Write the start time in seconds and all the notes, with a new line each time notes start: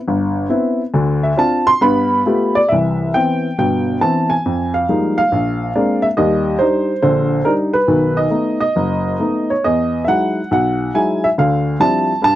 0.08 G1
0.49 B3 C4 E4
0.94 D2 D3
1.23 E5
1.37 C4 D4 F4 A5
1.67 C6
1.81 G2 B3 B5
2.26 A3 B3 F4 G4
2.55 D5
2.69 C2 E3 E5
3.14 E3 B3 C4 G5
3.58 G1 B2 G5
4.01 E3 B3 C4 A5
4.30 G#5
4.46 F2
4.74 F5
4.89 F3 G3 G#3 A#3 D#4
5.18 F5
5.32 A#1
5.75 G#3 A#3 C4 D4
6.02 E5
6.17 D#2 G3 D#5
6.59 G3 D4 D#4 C5
7.02 A#1 D3 C5
7.45 G3 D4 D#4 A#4
7.73 B4
7.88 B1 D#3
8.17 D#5
8.30 A3 B3 D#4
8.60 D#5
8.76 F#1
9.19 A3 B3 D#4
9.50 C#5
9.64 E2 D#5
10.04 F#3 G#3 D#4 E4 E5 F#5
10.51 B1 F#5
10.94 F#3 G#3 D#4 E4 G#5
11.24 E5
11.38 D2 D3 F5
11.80 F3 G3 C4 D4 E4 A5
12.22 G2 A5